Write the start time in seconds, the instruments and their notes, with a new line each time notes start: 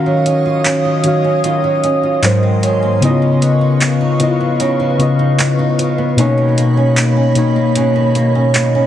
Already playing: synth keys D#3 C#4 F#4 F5, nylon-string guitar D#3 A#3 F4 F#4, ambient pad C#5 D#5 F5 D#6
0.06 nylon-string guitar F#3
0.26 nylon-string guitar C#4, closed hi-hat
0.46 nylon-string guitar F4
0.65 nylon-string guitar C#4, clap, closed hi-hat
0.85 nylon-string guitar F4
1.03 synth keys D#3 C#4 F#4, nylon-string guitar F#3, closed hi-hat
1.08 synth keys F5
1.24 nylon-string guitar C#4
1.44 nylon-string guitar D#3 F4, closed hi-hat
1.64 nylon-string guitar F#3
1.84 nylon-string guitar C#4, closed hi-hat
2.03 nylon-string guitar F4
2.22 synth keys G#2 F#3 A#4, nylon-string guitar G#2, clap, closed hi-hat
2.26 synth keys C5
2.43 nylon-string guitar C4
2.63 nylon-string guitar F#3, closed hi-hat
2.83 nylon-string guitar A#3
3.01 synth keys C#3 B3 E4, nylon-string guitar C#3 D#4, ambient pad B4 D#5 F5 C#6, closed hi-hat
3.05 synth keys D#5
3.10 synth keys F4
3.22 nylon-string guitar F3
3.41 nylon-string guitar B3, closed hi-hat
3.61 nylon-string guitar D#4
3.81 nylon-string guitar B3, clap, closed hi-hat
4.01 nylon-string guitar D#4
4.19 synth keys C#3 B3 E4 D#5, nylon-string guitar F3, closed hi-hat
4.28 synth keys F4
4.40 nylon-string guitar B3
4.60 nylon-string guitar C#3 D#4, closed hi-hat
4.80 nylon-string guitar F3
4.98 synth keys C#3 B3 F4, nylon-string guitar B3, closed hi-hat
5.02 synth keys D#5
5.19 nylon-string guitar D#4
5.39 nylon-string guitar B3, clap, closed hi-hat
5.59 nylon-string guitar D#4
5.79 nylon-string guitar F3, closed hi-hat
5.98 nylon-string guitar B3
6.16 synth keys B2 A#3 D#4, nylon-string guitar B2 C#4, ambient pad A#3 C#5 D#5 B5, closed hi-hat
6.20 synth keys C#5
6.38 nylon-string guitar D#3
6.57 nylon-string guitar A#3, closed hi-hat
6.77 nylon-string guitar C#4
6.97 nylon-string guitar A#3, clap, closed hi-hat
7.17 nylon-string guitar C#4
7.35 synth keys B2 A#3 D#4 C#5, nylon-string guitar D#3, closed hi-hat
7.56 nylon-string guitar A#3
7.75 nylon-string guitar B2 C#4, closed hi-hat
7.96 nylon-string guitar D#3
8.15 nylon-string guitar A#3, closed hi-hat
8.35 nylon-string guitar C#4
8.54 nylon-string guitar A#3, clap, closed hi-hat
8.75 nylon-string guitar C#4